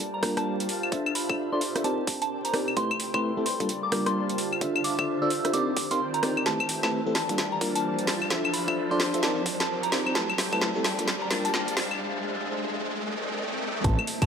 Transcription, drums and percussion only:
0.00 closed hi-hat
0.23 kick, cross-stick, open hi-hat
0.37 cross-stick, closed hi-hat
0.60 closed hi-hat
0.69 open hi-hat
0.83 claves
0.92 kick, closed hi-hat
1.06 claves
1.15 open hi-hat
1.29 kick, claves
1.61 open hi-hat
1.76 cross-stick, closed hi-hat
1.84 closed hi-hat
2.07 kick, open hi-hat
2.22 closed hi-hat
2.45 closed hi-hat
2.54 cross-stick, open hi-hat
2.68 claves
2.77 kick, closed hi-hat
2.91 claves
3.00 open hi-hat
3.14 kick, claves
3.46 open hi-hat
3.60 kick, closed hi-hat
3.69 closed hi-hat
3.92 kick, cross-stick, open hi-hat
4.06 cross-stick, closed hi-hat
4.29 closed hi-hat
4.38 open hi-hat
4.53 claves
4.61 kick, closed hi-hat
4.76 claves
4.84 open hi-hat
4.99 kick, claves
5.30 open hi-hat
5.45 cross-stick, closed hi-hat
5.54 closed hi-hat
5.77 kick, open hi-hat
5.91 closed hi-hat
6.14 closed hi-hat
6.23 cross-stick, open hi-hat
6.37 claves
6.46 kick, snare, closed hi-hat
6.60 claves
6.69 open hi-hat
6.83 kick, snare, claves
7.15 snare, open hi-hat
7.29 kick, closed hi-hat
7.38 snare, closed hi-hat
7.61 kick, open hi-hat
7.76 closed hi-hat
7.99 closed hi-hat
8.07 snare, open hi-hat
8.22 claves
8.30 kick, snare, closed hi-hat
8.45 claves
8.54 open hi-hat
8.68 kick, claves
9.00 snare, open hi-hat
9.14 closed hi-hat
9.23 snare, closed hi-hat
9.46 kick, open hi-hat
9.60 snare, closed hi-hat
9.83 closed hi-hat
9.92 snare, open hi-hat
10.06 claves
10.15 kick, snare, closed hi-hat
10.29 claves
10.38 snare, open hi-hat
10.53 kick, claves
10.61 snare
10.84 snare, open hi-hat
10.99 kick, closed hi-hat
11.08 snare, closed hi-hat
11.31 kick, snare, open hi-hat
11.45 closed hi-hat
11.54 snare
11.68 closed hi-hat
11.77 snare, open hi-hat
11.91 claves
13.84 kick, closed hi-hat
13.99 claves
14.07 open hi-hat
14.22 kick, closed hi-hat, claves

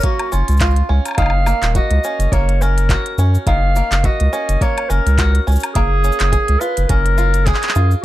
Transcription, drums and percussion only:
0.01 kick, closed hi-hat, cabasa
0.19 closed hi-hat, low woodblock
0.32 cabasa
0.48 closed hi-hat, cabasa
0.51 cabasa
0.57 kick, clap, closed hi-hat, cabasa
0.61 cabasa
0.66 cabasa
0.71 cabasa
0.76 closed hi-hat
1.05 closed hi-hat, cabasa, low woodblock
1.08 low woodblock
1.11 low woodblock
1.15 kick, closed hi-hat, low woodblock
1.18 cabasa, low woodblock
1.22 low woodblock
1.26 low woodblock
1.30 low woodblock
1.46 cabasa, low woodblock
1.63 clap, closed hi-hat, cabasa
1.75 kick, closed hi-hat, cabasa
1.91 closed hi-hat
2.04 cabasa
2.20 closed hi-hat, cabasa
2.32 kick, closed hi-hat, cabasa
2.49 closed hi-hat
2.62 cabasa
2.78 closed hi-hat, cabasa
2.89 kick, clap, closed hi-hat, cabasa
3.06 closed hi-hat
3.18 cabasa
3.35 cabasa
3.47 kick, closed hi-hat, cabasa
3.76 cabasa
3.92 clap, closed hi-hat, cabasa
4.04 kick, closed hi-hat, cabasa
4.20 closed hi-hat
4.33 cabasa
4.49 closed hi-hat, cabasa
4.61 kick, closed hi-hat, cabasa
4.78 closed hi-hat, low woodblock
4.90 cabasa
5.07 closed hi-hat, cabasa
5.18 kick, clap, closed hi-hat, cabasa
5.35 closed hi-hat
5.48 cabasa
5.52 cabasa
5.56 cabasa
5.60 closed hi-hat, cabasa, low woodblock
5.64 cabasa
5.75 kick, closed hi-hat, cabasa
6.04 cabasa
6.12 cabasa
6.20 clap, closed hi-hat
6.33 kick, closed hi-hat, cabasa
6.48 closed hi-hat
6.61 cabasa
6.77 closed hi-hat, cabasa
6.89 kick, closed hi-hat, cabasa
7.06 closed hi-hat
7.18 cabasa
7.34 closed hi-hat, cabasa
7.47 kick, clap, closed hi-hat, cabasa
7.54 clap
7.63 clap, closed hi-hat
7.69 clap
7.75 cabasa
7.91 cabasa

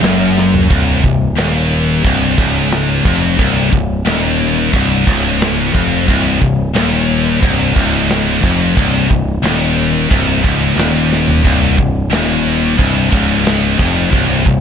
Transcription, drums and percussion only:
0.03 snare, open hi-hat
0.38 snare
0.54 floor tom
0.71 kick, open hi-hat
1.04 kick
1.37 snare, open hi-hat
2.04 kick, open hi-hat
2.38 kick
2.71 snare, open hi-hat
3.05 kick
3.39 kick, open hi-hat
3.73 kick
4.06 snare, open hi-hat
4.73 kick, open hi-hat
5.07 kick
5.41 snare, open hi-hat
5.75 kick
6.08 kick, open hi-hat
6.42 kick
6.75 snare, open hi-hat
7.43 kick, open hi-hat
7.76 kick
8.10 snare, open hi-hat
8.44 kick
8.77 kick, open hi-hat
9.11 kick
9.44 snare, open hi-hat
10.11 kick, open hi-hat
10.44 kick
10.78 snare, open hi-hat
11.13 snare
11.28 floor tom
11.45 kick, open hi-hat
11.78 kick
12.12 snare, open hi-hat
12.79 kick, open hi-hat
13.13 kick
13.46 snare, open hi-hat
13.79 kick
14.13 kick, open hi-hat
14.46 kick

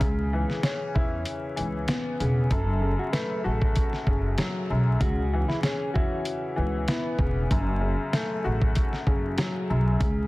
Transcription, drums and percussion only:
0.01 kick, closed hi-hat
0.50 snare
0.63 snare, closed hi-hat
0.96 kick
1.25 closed hi-hat
1.57 closed hi-hat
1.88 snare, closed hi-hat
2.20 closed hi-hat
2.51 kick, closed hi-hat
3.13 snare, closed hi-hat
3.62 kick
3.75 kick, closed hi-hat
3.93 snare
4.07 kick
4.38 snare, closed hi-hat
5.01 kick, closed hi-hat
5.50 snare
5.63 snare, closed hi-hat
5.96 kick
6.25 closed hi-hat
6.88 snare, closed hi-hat
7.19 kick
7.51 kick, closed hi-hat
8.13 snare, closed hi-hat
8.62 kick
8.75 kick, closed hi-hat
8.93 snare
9.07 kick
9.38 snare, closed hi-hat
10.01 kick, closed hi-hat

